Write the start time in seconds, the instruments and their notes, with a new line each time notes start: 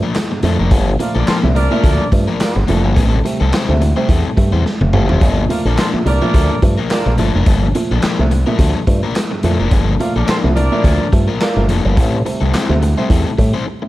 0.03 overdriven electric guitar F3 A#3 D4 A#4
0.15 upright piano F3 A3, muted overdriven electric guitar stroke, snare, clap, closed hi-hat
0.31 upright piano G2, muted overdriven electric guitar stroke
0.43 fingered electric bass F2, upright piano A#2 F3 A3, overdriven electric guitar F3 A#3 D4 A4, closed hi-hat
0.58 fingered electric bass F1, overdriven electric guitar F3 A#3 D4 A#4
0.71 fingered electric bass G1, upright piano G2, overdriven electric guitar F3 A#3 D4 A4, kick, closed hi-hat
0.87 upright piano F3 A3
0.99 upright piano A#2 F3 A3, horn section F4 A#4 D5 F5, muted overdriven electric guitar stroke, closed hi-hat
1.15 fingered electric bass A#1, overdriven electric guitar F3 A#3 D4 A4, horn section D4 A#4 D5
1.27 overdriven electric guitar F3 A#3 D4 A#4, horn section C4 F4 A4 C5, snare, clap, closed hi-hat
1.43 fingered electric bass C2, upright piano A#2 F3 A3
1.55 upright piano G2, horn section D4 A#4 D5, muted overdriven electric guitar stroke, closed hi-hat
1.71 upright piano A#2 F3 A3, overdriven electric guitar F3 A#3 D4 A#4
1.84 fingered electric bass D2, upright piano F3 A3, overdriven electric guitar F3 A#3 D4 A4, kick, closed hi-hat
2.00 upright piano G2
2.12 fingered electric bass G2, upright piano F3 A3, muted overdriven electric guitar stroke, kick, closed hi-hat
2.28 overdriven electric guitar F3 A#3 D4 A#4
2.40 upright piano F3 A3, horn section A#3 D4 F4 A#4, muted overdriven electric guitar stroke, snare, clap, closed hi-hat
2.55 fingered electric bass G1, upright piano G2, muted overdriven electric guitar stroke
2.68 fingered electric bass F1, upright piano A#2 F3 A3, overdriven electric guitar F3 A#3 D4 A4, closed hi-hat
2.84 fingered electric bass G1, overdriven electric guitar F3 A#3 D4 A#4
2.96 fingered electric bass A1, upright piano A2, overdriven electric guitar G3 C4 E4 A4, kick, closed hi-hat
3.12 upright piano G3 A3
3.24 upright piano C3 G3 A3, muted overdriven electric guitar stroke, closed hi-hat
3.40 fingered electric bass C2, overdriven electric guitar G3 C4 E4 A4
3.52 overdriven electric guitar G3 C4 E4 C5, muted fingered electric bass stroke, snare, clap, closed hi-hat
3.68 fingered electric bass D2, upright piano C3 G3 A3
3.81 upright piano A2, muted overdriven electric guitar stroke, closed hi-hat
3.96 upright piano C3 G3 A3, overdriven electric guitar G3 C4 E4 C5
4.08 fingered electric bass E2, overdriven electric guitar G3 C4 E4 A4, upright piano G3 A3, kick, closed hi-hat
4.24 upright piano A2
4.36 fingered electric bass G2, upright piano G3 A3, muted overdriven electric guitar stroke, kick, closed hi-hat
4.52 fingered electric bass E2, overdriven electric guitar G3 C4 E4 C5
4.65 upright piano G3 A3, muted overdriven electric guitar stroke, snare
4.80 fingered electric bass F1, upright piano A2, muted overdriven electric guitar stroke, high tom
4.93 fingered electric bass G1, upright piano C3 G3 A3, overdriven electric guitar G3 C4 E4 A4, mid tom
5.09 fingered electric bass F1, overdriven electric guitar G3 C4 E4 C5, floor tom
5.21 fingered electric bass G1, upright piano G2, overdriven electric guitar F3 A#3 D4 A4, kick, closed hi-hat
5.37 upright piano F3 A3
5.49 upright piano A#2 F3 A3, horn section F4 A#4 D5 F5, muted overdriven electric guitar stroke, closed hi-hat
5.65 fingered electric bass A#1, overdriven electric guitar F3 A#3 D4 A4, horn section D4 A#4 D5
5.77 overdriven electric guitar F3 A#3 D4 A#4, horn section C4 F4 A4 C5, snare, clap, closed hi-hat
5.93 upright piano A#2 F3 A3, muted fingered electric bass stroke
6.05 fingered electric bass C2, upright piano G2, horn section D4 A#4 D5, muted overdriven electric guitar stroke, closed hi-hat
6.22 upright piano A#2 F3 A3, overdriven electric guitar F3 A#3 D4 A#4
6.34 fingered electric bass D2, upright piano F3 A3, overdriven electric guitar F3 A#3 D4 A4, kick, closed hi-hat
6.50 upright piano G2
6.62 fingered electric bass G2, upright piano F3 A3, muted overdriven electric guitar stroke, kick, closed hi-hat
6.78 overdriven electric guitar F3 A#3 D4 A#4
6.90 upright piano F3 A3, horn section A#3 D4 F4 A#4, muted overdriven electric guitar stroke, snare, clap, closed hi-hat
7.06 fingered electric bass A#1, upright piano G2, muted overdriven electric guitar stroke
7.18 fingered electric bass G1, upright piano A#2 F3 A3, overdriven electric guitar F3 A#3 D4 A4, closed hi-hat
7.34 fingered electric bass F1, overdriven electric guitar F3 A#3 D4 A#4
7.46 fingered electric bass G1, upright piano G2, overdriven electric guitar F3 A#3 D4 A4, kick, closed hi-hat
7.63 upright piano F3 A3
7.75 upright piano A#2 F3 A3, muted overdriven electric guitar stroke, closed hi-hat
7.91 fingered electric bass A#1, overdriven electric guitar F3 A#3 D4 A4
8.02 overdriven electric guitar F3 A#3 D4 A#4, snare, clap, closed hi-hat
8.19 fingered electric bass C2, upright piano A#2 F3 A3
8.31 upright piano G2, muted overdriven electric guitar stroke, closed hi-hat
8.46 upright piano A#2 F3 A3, overdriven electric guitar F3 A#3 D4 A#4
8.59 fingered electric bass D2, upright piano F3 A3, overdriven electric guitar F3 A#3 D4 A4, kick, closed hi-hat
8.75 upright piano G2
8.87 fingered electric bass G2, upright piano F3 A3, muted overdriven electric guitar stroke, kick, closed hi-hat
9.03 overdriven electric guitar F3 A#3 D4 A#4
9.15 upright piano F3 A3, muted overdriven electric guitar stroke, snare, clap, closed hi-hat
9.31 upright piano G2, muted overdriven electric guitar stroke
9.43 fingered electric bass F2, upright piano A#2 F3 A3, overdriven electric guitar F3 A#3 D4 A4, closed hi-hat
9.59 fingered electric bass F1, overdriven electric guitar F3 A#3 D4 A#4
9.71 fingered electric bass G1, upright piano G2, overdriven electric guitar F3 A#3 D4 A4, kick, closed hi-hat
9.88 upright piano F3 A3
10.00 upright piano A#2 F3 A3, horn section F4 A#4 D5 F5, muted overdriven electric guitar stroke, closed hi-hat
10.15 fingered electric bass A#1, overdriven electric guitar F3 A#3 D4 A4, horn section D4 A#4 D5
10.27 overdriven electric guitar F3 A#3 D4 A#4, horn section C4 F4 A4 C5, snare, clap, closed hi-hat
10.44 fingered electric bass C2, upright piano A#2 F3 A3
10.55 upright piano G2, horn section D4 A#4 D5, muted overdriven electric guitar stroke, closed hi-hat
10.72 upright piano A#2 F3 A3, overdriven electric guitar F3 A#3 D4 A#4
10.84 fingered electric bass D2, overdriven electric guitar F3 A#3 D4 A4, upright piano F3 A3, kick, closed hi-hat
11.00 upright piano G2
11.12 fingered electric bass G2, upright piano F3 A3, muted overdriven electric guitar stroke, kick, closed hi-hat
11.28 overdriven electric guitar F3 A#3 D4 A#4
11.40 horn section A#3 D4 F4 A#4, muted overdriven electric guitar stroke, snare, clap, closed hi-hat
11.56 fingered electric bass G1, upright piano A#2 F3 A3, muted overdriven electric guitar stroke
11.69 fingered electric bass F1, overdriven electric guitar F3 A#3 D4 A4, closed hi-hat
11.84 fingered electric bass G1, upright piano G2, overdriven electric guitar F3 A#3 D4 A#4
11.97 fingered electric bass A1, upright piano A2, overdriven electric guitar G3 C4 E4 A4, kick, closed hi-hat
12.13 upright piano G3 A3
12.25 upright piano C3 G3 A3, muted overdriven electric guitar stroke, closed hi-hat
12.41 fingered electric bass C2, overdriven electric guitar G3 C4 E4 A4
12.53 overdriven electric guitar G3 C4 E4 C5, muted fingered electric bass stroke, snare, clap, closed hi-hat
12.69 fingered electric bass D2, upright piano C3 G3 A3
12.81 upright piano A2, muted overdriven electric guitar stroke, closed hi-hat
12.97 upright piano C3 G3 A3, overdriven electric guitar G3 C4 E4 C5
13.09 fingered electric bass E2, upright piano G3 A3, overdriven electric guitar G3 C4 E4 A4, kick, closed hi-hat
13.25 upright piano A2
13.38 fingered electric bass A2, upright piano G3 A3, muted overdriven electric guitar stroke, kick, closed hi-hat
13.54 overdriven electric guitar G3 C4 E4 C5
13.66 upright piano G3 A3, muted overdriven electric guitar stroke
13.82 upright piano A2, muted overdriven electric guitar stroke